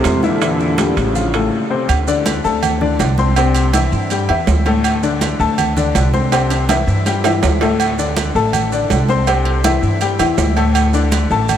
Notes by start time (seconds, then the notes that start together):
Already playing: A2 C3 C4 C5 C6
0.04 E2, high conga, high timbale, low timbale, maracas
0.23 A#2 D3 E3 E4 E5, high conga, maracas
0.41 E3 E4 E5, high conga, high timbale, maracas
0.59 high conga, maracas
0.78 G3 G4 G5, high conga, high timbale, low timbale, maracas
0.96 A1 A2 C#3, high conga, high timbale, maracas
1.15 F3 F4 F5, high conga, maracas
1.34 A2 A3 A4, high conga, high timbale, maracas
1.70 C3 C4 C5
1.89 D2, high conga, low agogo, maracas
2.08 D3 D4 D5, high conga, maracas
2.26 high conga, low timbale, low agogo, maracas
2.44 D2 A3 A4 A5, high conga, maracas
2.63 high conga, low conga, low agogo, maracas
2.81 D3 D4 D5, high conga, low conga
2.99 C2, high conga, low timbale, low agogo, maracas
3.18 C4 C5 C6, high conga, maracas
3.36 C3 C4 C5, high conga, low agogo, maracas
3.55 high conga, low agogo, maracas
3.73 E3 E4 E5, high conga, low timbale, low agogo, maracas
3.92 G2, maracas
4.10 G3 G4 G5, high conga, low agogo, maracas
4.29 E2 E3 E4 E5, high conga, low agogo
4.47 D2, high conga, low timbale, maracas
4.66 A2 A3 A4, high conga, low agogo, maracas
4.84 high conga, low agogo, maracas
5.03 D3 D4 D5, high conga, maracas
5.21 high conga, low timbale, low agogo, maracas
5.40 D2 A3 A4 A5, high conga, maracas
5.58 high conga, low conga, low agogo, maracas
5.77 D3 D4 D5, high conga, low conga, maracas
5.95 C2, high conga, low timbale, low agogo, maracas
6.13 C4 C5 C6, high conga, maracas
6.32 C3 C4 C5, high conga, high timbale, low agogo, maracas
6.50 high conga, high timbale, low agogo, maracas
6.69 E3 E4 E5, high conga, high timbale, low agogo, maracas
6.87 G2, maracas
7.06 G3 G4 G5, high conga, low timbale, low agogo, maracas
7.24 E3 E4 E5, high conga, low timbale, low agogo, maracas
7.43 D2, high conga, low timbale, maracas
7.61 A2 A3 A4, high conga, low timbale, low agogo, maracas
7.79 high conga, low agogo, maracas
7.98 D3 D4 D5, high conga, maracas
8.17 high conga, low timbale, low agogo, maracas
8.35 A1 A3 A4 A5, high conga, maracas
8.53 high conga, low conga, low agogo, maracas
8.72 D3 D4 D5, high conga, maracas
8.90 C2, high conga, low timbale, low agogo, maracas
9.09 C4 C5 C6, high conga, maracas
9.27 C3 C4 C5, high conga, low agogo, maracas
9.45 high conga, low agogo
9.64 E3 E4 E5, high conga, low timbale, low agogo, maracas
9.82 G2, maracas
10.01 G3 G4 G5, high conga, low agogo, maracas
10.19 E2 E3 E4 E5, high conga, low agogo, maracas
10.38 D2, high conga, low timbale, maracas
10.56 A2 A3 A4, low agogo, maracas
10.75 high conga, low agogo, maracas
10.94 D3 D4 D5, high conga, maracas
11.12 high conga, low timbale, low agogo, maracas
11.30 A1 A3 A4 A5, high conga, maracas
11.49 high conga, low conga, low agogo, maracas